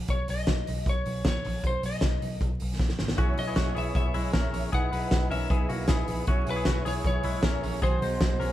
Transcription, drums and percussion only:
0.08 kick medium
0.08 closed hi-hat medium
0.28 open hi-hat medium
0.47 kick loud
0.47 snare loud
0.47 closed hi-hat medium
0.67 open hi-hat medium
0.86 kick medium
0.86 closed hi-hat medium
1.06 open hi-hat medium
1.25 kick loud
1.25 snare loud
1.25 closed hi-hat medium
1.45 open hi-hat medium
1.64 kick loud
1.64 closed hi-hat medium
1.83 open hi-hat medium
2.01 kick loud
2.01 snare loud
2.01 closed hi-hat medium
2.22 open hi-hat medium
2.41 kick medium
2.41 closed hi-hat medium
2.60 open hi-hat medium
2.79 kick loud
2.79 snare medium
2.89 snare medium
2.99 snare medium
3.08 snare medium
3.18 kick loud
3.18 closed hi-hat medium
3.38 open hi-hat medium
3.56 kick loud
3.56 snare loud
3.56 closed hi-hat medium
3.77 open hi-hat medium
3.95 kick loud
3.95 closed hi-hat medium
4.14 open hi-hat medium
4.33 kick loud
4.33 snare loud
4.33 closed hi-hat medium
4.54 open hi-hat medium
4.73 kick loud
4.73 closed hi-hat medium
4.93 open hi-hat medium
5.11 kick loud
5.11 snare loud
5.11 closed hi-hat medium
5.31 open hi-hat medium
5.50 kick loud
5.50 closed hi-hat medium
5.70 open hi-hat medium
5.88 kick loud
5.88 snare loud
5.88 closed hi-hat medium
6.08 open hi-hat medium
6.27 kick loud
6.27 closed hi-hat medium
6.47 open hi-hat medium
6.65 kick loud
6.65 snare loud
6.65 closed hi-hat medium
6.86 open hi-hat medium
7.04 kick loud
7.04 closed hi-hat medium
7.23 open hi-hat medium
7.43 kick loud
7.43 snare loud
7.43 closed hi-hat medium
7.63 open hi-hat medium
7.82 kick loud
7.82 closed hi-hat medium
8.02 open hi-hat medium
8.21 kick loud
8.21 snare loud
8.21 closed hi-hat medium
8.41 open hi-hat medium

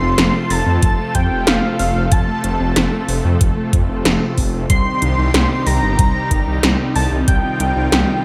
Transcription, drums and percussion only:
0.18 snare loud
0.18 closed hi-hat medium
0.50 open hi-hat medium
0.83 kick loud
0.83 closed hi-hat medium
1.15 kick medium
1.15 closed hi-hat medium
1.47 snare loud
1.47 closed hi-hat medium
1.79 open hi-hat medium
2.12 kick loud
2.12 closed hi-hat medium
2.44 closed hi-hat medium
2.76 snare loud
2.76 closed hi-hat medium
3.09 open hi-hat medium
3.41 kick loud
3.41 closed hi-hat medium
3.73 kick loud
3.73 closed hi-hat medium
4.05 snare loud
4.05 closed hi-hat medium
4.38 kick medium
4.38 open hi-hat medium
4.70 kick loud
4.70 closed hi-hat medium
5.02 closed hi-hat medium
5.34 snare loud
5.34 closed hi-hat medium
5.67 open hi-hat medium
5.99 kick loud
5.99 closed hi-hat loud
6.31 kick medium
6.31 closed hi-hat medium
6.63 snare loud
6.63 closed hi-hat medium
6.96 open hi-hat medium
7.28 kick loud
7.28 closed hi-hat medium
7.60 closed hi-hat medium
7.92 snare loud
7.92 closed hi-hat medium

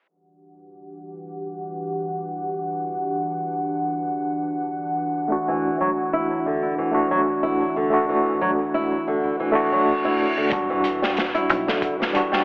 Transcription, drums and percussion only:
10.51 kick loud
10.51 closed hi-hat medium
10.84 closed hi-hat medium
11.03 snare soft
11.17 snare loud
11.17 closed hi-hat medium
11.35 closed hi-hat soft
11.50 closed hi-hat medium
11.68 snare soft
11.82 kick loud
11.82 closed hi-hat medium
12.02 snare medium
12.15 closed hi-hat medium
12.33 snare soft

